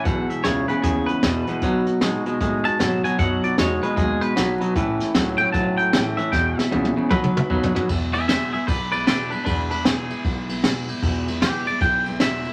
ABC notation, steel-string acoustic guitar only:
X:1
M:4/4
L:1/8
Q:"Swing" 1/4=153
K:E
V:1 name="Steel-string acoustic guitar"
[E,,B,,E,G,B,E] [E,G,B,E] [E,,B,,E,G,B,E] [E,G,B,E] [E,G,B,E] [E,G,B,E] [E,,B,,E,G,B,E] [E,G,B,E] | [B,,F,B,DF] [B,DF] [B,,F,B,DF] [B,DF] [F,B,DF] [B,DF] [B,,F,B,DF] [B,DF] | [B,,F,B,DF] [B,DF] [B,,F,B,DF] [B,DF] [F,B,DF] [B,DF] [B,,F,B,DF] [B,DF] | [A,,E,A,CE] [A,CE] [A,,E,A,CE] [A,CE] [E,A,CE] [A,CE] [A,,E,A,CE] [A,CE] |
[E,,B,,E,G,B,E] [E,G,B,E] [E,,B,,E,G,B,E] [E,G,B,E] [F,B,DF] [B,DF] [B,,F,B,DF] [B,DF] | [E,,B,,E,G,B,E] [E,G,B,E] [E,,B,,E,G,B,E] [E,G,B,E] [E,G,B,E] [E,G,B,E] [E,,B,,E,G,B,E] [E,G,B,E] | [E,,B,,E,G,B,E] [E,G,B,E] [E,,B,,E,G,B,E] [E,G,B,E] [E,G,B,E] [E,G,B,E] [E,,B,,E,G,B,E] [E,G,B,E] | [E,,B,,E,G,B,E] [E,G,B,E] [E,,B,,E,G,B,E] [E,G,B,E] [E,G,B,E] [E,G,B,E] [E,,B,,E,G,B,E] [E,G,B,E] |]